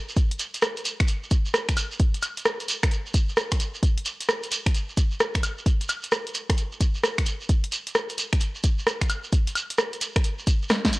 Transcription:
0.09 shekere soft
0.17 kick loud
0.17 closed hi-hat medium
0.17 shekere medium
0.31 closed hi-hat medium
0.39 closed hi-hat loud
0.39 shekere loud
0.54 closed hi-hat medium
0.54 shekere soft
0.62 cross-stick loud
0.62 shekere medium
0.77 closed hi-hat soft
0.77 shekere soft
0.85 closed hi-hat loud
0.85 shekere medium
1.00 finger snap medium
1.00 kick loud
1.00 closed hi-hat medium
1.00 shekere soft
1.08 closed hi-hat medium
1.08 shekere medium
1.23 shekere soft
1.31 kick loud
1.31 closed hi-hat loud
1.31 shekere loud
1.46 shekere soft
1.54 cross-stick loud
1.54 shekere medium
1.69 finger snap medium
1.69 kick medium
1.69 closed hi-hat soft
1.69 shekere soft
1.77 closed hi-hat loud
1.77 high woodblock medium
1.77 shekere loud
1.92 shekere soft
1.99 kick loud
1.99 closed hi-hat medium
1.99 shekere soft
2.14 closed hi-hat medium
2.14 shekere soft
2.22 closed hi-hat loud
2.22 high woodblock medium
2.22 shekere loud
2.37 closed hi-hat medium
2.37 shekere soft
2.45 cross-stick loud
2.45 shekere medium
2.60 closed hi-hat soft
2.60 shekere soft
2.68 closed hi-hat loud
2.68 shekere loud
2.83 finger snap medium
2.83 kick loud
2.83 cross-stick medium
2.83 closed hi-hat medium
2.83 shekere soft
2.91 closed hi-hat medium
2.91 shekere medium
3.06 shekere soft
3.14 kick loud
3.14 closed hi-hat loud
3.14 shekere loud
3.29 shekere soft
3.37 cross-stick loud
3.37 shekere medium
3.52 finger snap medium
3.52 kick medium
3.52 closed hi-hat medium
3.52 shekere soft
3.60 closed hi-hat loud
3.60 shekere medium
3.74 shekere soft
3.83 kick loud
3.83 closed hi-hat medium
3.83 shekere medium
3.98 closed hi-hat medium
4.06 closed hi-hat loud
4.06 shekere medium
4.21 closed hi-hat medium
4.21 shekere soft
4.29 cross-stick loud
4.29 shekere medium
4.43 closed hi-hat soft
4.43 shekere soft
4.52 closed hi-hat loud
4.52 shekere loud
4.66 finger snap medium
4.66 kick loud
4.66 closed hi-hat medium
4.66 shekere soft
4.75 closed hi-hat medium
4.75 shekere medium
4.89 shekere soft
4.97 kick loud
4.97 closed hi-hat loud
4.97 shekere medium
5.11 shekere soft
5.20 cross-stick loud
5.20 shekere medium
5.35 finger snap medium
5.35 kick medium
5.35 closed hi-hat medium
5.35 shekere soft
5.43 closed hi-hat loud
5.43 high woodblock medium
5.43 shekere medium
5.58 shekere soft
5.66 kick loud
5.66 closed hi-hat medium
5.66 shekere soft
5.81 closed hi-hat medium
5.81 shekere soft
5.89 closed hi-hat loud
5.89 high woodblock medium
5.89 shekere medium
6.03 closed hi-hat medium
6.03 shekere soft
6.12 cross-stick loud
6.12 shekere medium
6.27 closed hi-hat soft
6.27 shekere soft
6.34 closed hi-hat loud
6.34 shekere loud
6.50 finger snap medium
6.50 kick loud
6.50 cross-stick medium
6.50 closed hi-hat medium
6.50 shekere soft
6.58 closed hi-hat medium
6.58 shekere medium
6.72 shekere soft
6.81 kick loud
6.81 closed hi-hat loud
6.81 shekere medium
6.95 shekere soft
7.04 cross-stick loud
7.04 shekere medium
7.18 finger snap medium
7.18 kick medium
7.18 closed hi-hat medium
7.18 shekere soft
7.26 closed hi-hat loud
7.26 shekere medium
7.41 shekere soft
7.49 kick loud
7.49 closed hi-hat medium
7.49 shekere soft
7.64 closed hi-hat medium
7.72 closed hi-hat loud
7.72 shekere medium
7.87 closed hi-hat medium
7.87 shekere soft
7.95 cross-stick loud
7.95 shekere soft
8.09 closed hi-hat soft
8.09 shekere soft
8.18 closed hi-hat loud
8.18 shekere medium
8.33 finger snap medium
8.33 kick loud
8.33 closed hi-hat medium
8.33 shekere soft
8.40 closed hi-hat medium
8.40 shekere medium
8.55 shekere soft
8.64 kick loud
8.64 closed hi-hat loud
8.64 shekere medium
8.79 shekere soft
8.87 cross-stick loud
8.87 shekere medium
9.01 finger snap medium
9.01 kick medium
9.01 closed hi-hat medium
9.01 shekere soft
9.09 closed hi-hat loud
9.09 high woodblock medium
9.09 shekere medium
9.24 shekere soft
9.33 kick loud
9.33 closed hi-hat medium
9.33 shekere soft
9.47 closed hi-hat medium
9.47 shekere soft
9.55 closed hi-hat loud
9.55 high woodblock medium
9.55 shekere loud
9.70 closed hi-hat medium
9.70 shekere soft
9.78 cross-stick loud
9.78 shekere medium
9.93 closed hi-hat soft
9.93 shekere soft
10.01 closed hi-hat loud
10.01 shekere medium
10.16 finger snap medium
10.16 kick loud
10.16 cross-stick medium
10.16 closed hi-hat medium
10.16 shekere soft
10.24 closed hi-hat medium
10.24 shekere medium
10.39 shekere soft
10.47 kick loud
10.47 closed hi-hat loud
10.47 shekere medium
10.62 shekere soft
10.69 cross-stick loud
10.69 snare medium
10.69 shekere medium
10.85 kick medium
10.85 snare medium
10.85 closed hi-hat medium
10.85 shekere soft
10.93 closed hi-hat loud
10.93 shekere medium

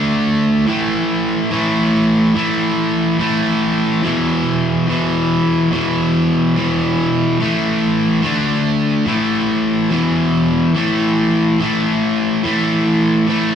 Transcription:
0.00 0.65 D3 medium
0.00 0.68 A3 medium
0.00 0.67 D4 medium
0.67 1.50 A2 medium
0.67 1.51 E3 loud
0.67 1.53 A3 loud
1.50 2.33 A2 medium
1.50 2.36 E3 medium
1.50 2.35 A3 medium
2.35 3.17 A2 medium
2.35 3.20 E3 medium
2.35 3.19 A3 loud
3.18 4.02 A2 medium
3.18 4.04 E3 medium
3.18 4.03 A3 medium
4.02 4.87 E2 medium
4.02 4.86 B2 medium
4.02 4.89 E3 loud
4.87 5.70 E2 medium
4.87 5.71 B2 medium
4.87 5.74 E3 medium
5.71 6.54 E2 medium
5.71 6.55 B2 medium
5.71 6.55 E3 medium
6.55 7.38 E2 medium
6.55 7.39 B2 medium
6.55 7.39 E3 medium
7.39 8.22 A2 medium
7.39 8.23 E3 medium
7.39 8.22 A3 loud
8.22 9.05 D3 medium
8.22 9.06 A3 medium
8.22 9.07 D4 loud
9.06 9.89 A2 medium
9.06 9.90 E3 medium
9.06 9.91 A3 medium
9.90 10.74 E2 medium
9.90 10.74 B2 loud
9.90 10.75 E3 loud
10.74 11.59 A2 medium
10.74 11.61 E3 medium
10.74 11.62 A3 medium
11.60 12.43 A2 medium
11.60 12.45 E3 medium
11.60 12.46 A3 medium
12.43 13.27 A2 medium
12.43 13.29 E3 medium
12.43 13.30 A3 medium
13.27 13.55 A2 medium
13.27 13.55 E3 medium
13.27 13.55 A3 medium

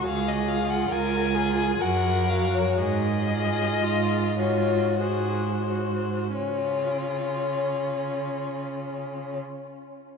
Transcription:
0.05 0.81 C#2 medium
0.05 0.90 G#4 medium
0.05 0.30 F5 medium
0.28 0.50 D#5 medium
0.49 1.34 F4 medium
0.49 0.72 F5 medium
0.70 0.93 F#5 medium
0.91 1.70 C#2 medium
0.91 1.37 A#4 medium
0.91 1.83 G#5 loud
1.35 1.81 F4 medium
1.35 1.83 G#4 medium
1.81 2.67 F#2 medium
1.81 2.28 F#4 medium
1.81 2.78 A#4 medium
1.81 2.32 F#5 medium
2.28 2.77 F#4 medium
2.28 2.56 F5 medium
2.55 2.80 C#5 medium
2.78 3.69 G#2 medium
2.78 3.85 G#4 medium
2.78 4.38 D#5 loud
3.28 4.37 F4 medium
3.82 4.85 G#2 medium
3.82 4.40 F4 medium
4.39 4.99 F4 medium
4.39 5.02 F#4 medium
4.39 4.99 C#5 medium
5.00 6.21 G#2 medium
5.00 5.67 F#4 medium
5.00 5.69 G#4 medium
5.00 6.34 C5 medium
5.69 6.35 F#4 soft
6.36 9.37 C#3 soft
6.36 9.37 C#4 soft
6.36 9.37 F4 medium
6.36 9.37 C#5 medium

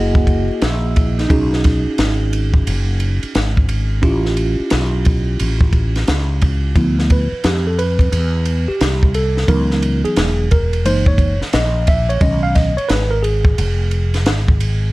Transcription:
0.00 0.47 F#1 medium
0.00 1.27 A#3 medium
0.00 1.27 E4 medium
0.00 0.64 F#4 medium
0.00 1.28 G#4 medium
0.00 1.27 D#5 medium
0.15 kick medium
0.27 kick medium
0.27 ride soft
0.50 muted fretless electric bass stroke soft
0.62 1.27 A#1 medium
0.62 1.18 E4 medium
0.62 snare loud
0.62 hi-hat pedal soft
0.62 ride medium
0.96 kick medium
0.96 ride medium
1.18 2.51 D#4 medium
1.18 snare soft
1.18 ride soft
1.29 1.83 B1 loud
1.29 3.98 C#4 medium
1.29 3.98 D#4 medium
1.29 3.99 F#4 medium
1.29 3.99 G#4 medium
1.29 kick loud
1.29 ride medium
1.53 snare soft
1.64 kick loud
1.64 snare soft
1.64 ride medium
1.86 muted fretless electric bass stroke soft
1.98 2.63 G#1 medium
1.98 snare loud
1.98 hi-hat pedal medium
1.98 ride medium
2.33 ride medium
2.54 kick medium
2.67 3.20 F#1 medium
2.67 ride medium
3.00 ride soft
3.23 muted fretless electric bass stroke soft
3.23 ride soft
3.35 4.00 G#1 medium
3.35 snare loud
3.35 hi-hat pedal soft
3.35 ride medium
3.57 kick medium
3.69 ride medium
4.02 4.56 A1 loud
4.02 6.71 C#4 medium
4.02 6.72 E4 medium
4.02 6.72 F4 medium
4.02 6.72 G4 medium
4.02 kick loud
4.02 ride medium
4.26 snare soft
4.37 ride medium
4.59 muted fretless electric bass stroke soft
4.70 5.36 B1 medium
4.70 snare loud
4.70 hi-hat pedal medium
4.70 ride medium
5.05 kick medium
5.05 ride medium
5.39 6.04 A1 medium
5.39 ride medium
5.61 kick medium
5.73 kick medium
5.73 ride soft
5.96 snare soft
5.96 ride soft
6.08 6.72 C#2 medium
6.08 snare loud
6.08 hi-hat pedal soft
6.08 ride medium
6.42 kick medium
6.42 ride medium
6.75 7.29 D2 loud
6.75 7.25 F3 soft
6.75 7.25 B3 soft
6.75 7.25 E4 medium
6.75 kick loud
6.75 ride medium
6.99 snare soft
7.10 7.46 B4 medium
7.10 kick medium
7.10 ride medium
7.32 muted fretless electric bass stroke soft
7.44 8.09 F2 medium
7.44 7.65 G4 medium
7.44 snare loud
7.44 hi-hat pedal medium
7.44 ride medium
7.67 7.79 A4 medium
7.79 8.71 B4 medium
7.79 ride medium
7.99 kick medium
7.99 ride soft
8.12 8.65 E2 medium
8.12 ride medium
8.45 ride medium
8.68 9.11 G4 medium
8.68 muted fretless electric bass stroke soft
8.81 9.45 C2 medium
8.81 snare loud
8.81 hi-hat pedal soft
8.81 ride medium
9.03 kick medium
9.14 9.50 A4 medium
9.14 ride medium
9.37 snare soft
9.47 10.02 C#2 loud
9.47 10.46 E3 medium
9.47 10.46 F#3 soft
9.47 10.47 B3 soft
9.47 10.47 D#4 medium
9.47 10.01 A#4 medium
9.47 kick loud
9.47 ride medium
9.71 snare soft
9.83 ride medium
10.05 10.48 G#4 medium
10.05 muted fretless electric bass stroke soft
10.05 ride soft
10.17 10.85 E1 medium
10.17 snare loud
10.17 hi-hat pedal medium
10.17 ride medium
10.51 10.86 A#4 medium
10.51 kick medium
10.51 ride medium
10.73 ride soft
10.85 11.38 F#1 loud
10.85 11.34 E3 medium
10.85 11.34 G#3 soft
10.85 11.34 A#3 soft
10.85 11.35 D#4 medium
10.85 11.06 C5 medium
10.85 ride medium
11.06 11.39 C#5 medium
11.06 kick medium
11.18 kick medium
11.18 ride medium
11.41 muted fretless electric bass stroke soft
11.41 snare soft
11.53 12.18 A#1 medium
11.53 11.89 D#5 medium
11.53 snare loud
11.53 hi-hat pedal medium
11.53 ride medium
11.87 12.10 E5 medium
11.87 kick medium
11.87 ride medium
12.09 12.22 C#5 medium
12.09 ride soft
12.20 12.74 B1 loud
12.20 12.70 D#3 medium
12.20 12.70 G#3 soft
12.20 12.70 C#4 medium
12.20 12.42 D#5 loud
12.20 kick loud
12.20 ride medium
12.43 12.56 F5 medium
12.55 12.76 D#5 medium
12.55 kick medium
12.55 snare soft
12.55 ride medium
12.77 12.90 C#5 loud
12.77 muted fretless electric bass stroke soft
12.77 ride soft
12.88 13.54 G#1 loud
12.88 13.11 B4 loud
12.88 snare loud
12.88 hi-hat pedal medium
12.88 ride medium
13.11 13.24 A#4 medium
13.23 14.89 G#4 medium
13.23 ride medium
13.45 kick medium
13.58 14.26 F1 loud
13.58 ride medium
13.91 ride medium
14.14 snare soft
14.14 ride soft
14.26 14.91 G#1 medium
14.26 snare loud
14.26 hi-hat pedal soft
14.26 ride medium
14.48 kick loud
14.60 ride medium

